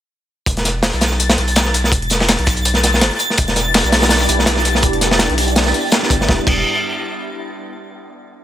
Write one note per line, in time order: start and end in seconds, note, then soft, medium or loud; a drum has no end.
0.46 0.91 E1 loud
0.46 6.30 A6 medium
0.46 kick loud
0.46 closed hi-hat medium
0.46 tambourine medium
0.57 snare soft
0.57 closed hi-hat soft
0.65 snare soft
0.65 closed hi-hat medium
0.65 tambourine medium
0.83 snare loud
0.83 open hi-hat medium
0.83 tambourine medium
0.93 1.37 B1 loud
0.93 snare soft
0.93 closed hi-hat soft
1.01 snare loud
1.01 closed hi-hat medium
1.01 tambourine medium
1.11 snare soft
1.20 closed hi-hat medium
1.20 tambourine medium
1.29 snare loud
1.29 snare soft
1.29 closed hi-hat medium
1.38 1.91 B1 medium
1.38 snare soft
1.38 tambourine medium
1.48 closed hi-hat medium
1.56 snare loud
1.56 closed hi-hat medium
1.56 tambourine medium
1.65 snare soft
1.74 snare soft
1.74 closed hi-hat medium
1.74 tambourine medium
1.84 snare soft
1.92 2.37 E1 loud
1.92 kick loud
1.92 closed hi-hat medium
1.92 tambourine medium
2.02 closed hi-hat soft
2.10 snare soft
2.10 closed hi-hat medium
2.10 tambourine medium
2.20 snare medium
2.29 snare loud
2.29 closed hi-hat medium
2.29 tambourine medium
2.39 3.03 B1 loud
2.39 closed hi-hat soft
2.47 kick medium
2.47 snare medium
2.47 closed hi-hat medium
2.47 open hi-hat medium
2.57 closed hi-hat soft
2.65 closed hi-hat medium
2.65 tambourine medium
2.74 snare soft
2.83 snare medium
2.83 closed hi-hat medium
2.83 tambourine medium
2.94 snare medium
3.01 3.10 G1 medium
3.01 snare loud
3.01 closed hi-hat medium
3.01 tambourine medium
3.12 snare soft
3.19 closed hi-hat medium
3.19 tambourine medium
3.30 snare soft
3.38 3.83 E1 loud
3.38 3.64 G3 medium
3.38 3.64 B3 medium
3.38 3.64 D4 medium
3.38 3.64 E4 medium
3.38 3.64 G4 loud
3.38 kick loud
3.38 closed hi-hat medium
3.38 tambourine medium
3.48 snare medium
3.48 closed hi-hat soft
3.56 snare soft
3.56 closed hi-hat medium
3.56 tambourine medium
3.66 4.82 G3 medium
3.66 4.82 B3 medium
3.66 4.82 D4 medium
3.66 4.82 E4 medium
3.66 4.82 G4 medium
3.74 snare loud
3.74 open hi-hat medium
3.74 tambourine medium
3.84 4.28 B1 loud
3.84 snare soft
3.84 closed hi-hat soft
3.92 snare loud
3.92 open hi-hat medium
3.92 tambourine medium
4.02 snare loud
4.02 open hi-hat medium
4.09 snare loud
4.09 open hi-hat medium
4.09 tambourine medium
4.21 snare soft
4.29 4.82 B1 medium
4.29 closed hi-hat medium
4.29 tambourine medium
4.39 snare soft
4.46 snare loud
4.46 closed hi-hat medium
4.46 tambourine medium
4.57 snare medium
4.65 snare soft
4.65 closed hi-hat medium
4.65 tambourine medium
4.75 snare soft
4.83 5.28 E1 loud
4.83 5.09 G3 medium
4.83 5.09 B3 medium
4.83 5.09 D4 medium
4.83 5.09 E4 medium
4.83 5.09 G4 loud
4.83 kick loud
4.83 closed hi-hat medium
4.83 tambourine medium
4.93 closed hi-hat soft
5.01 snare soft
5.01 closed hi-hat medium
5.01 tambourine medium
5.11 6.27 G3 medium
5.11 6.27 B3 medium
5.11 6.27 D4 medium
5.11 6.27 E4 medium
5.11 6.27 G4 medium
5.11 snare medium
5.19 snare loud
5.19 closed hi-hat medium
5.19 tambourine medium
5.30 5.73 B1 loud
5.30 closed hi-hat soft
5.38 open hi-hat medium
5.48 closed hi-hat soft
5.56 snare loud
5.56 open hi-hat medium
5.56 tambourine medium
5.66 snare soft
5.74 tambourine medium
5.92 snare loud
5.92 closed hi-hat medium
5.92 tambourine medium
6.02 snare soft
6.02 snare medium
6.10 6.27 G1 medium
6.10 kick loud
6.10 closed hi-hat medium
6.10 tambourine medium
6.21 snare medium
6.29 6.39 E1 loud
6.29 6.43 G3 medium
6.29 6.43 B3 medium
6.29 6.43 D4 medium
6.29 6.43 E4 medium
6.29 6.43 G4 loud
6.29 kick loud
6.29 snare medium
6.47 6.64 E1 medium
6.47 kick loud
6.47 crash medium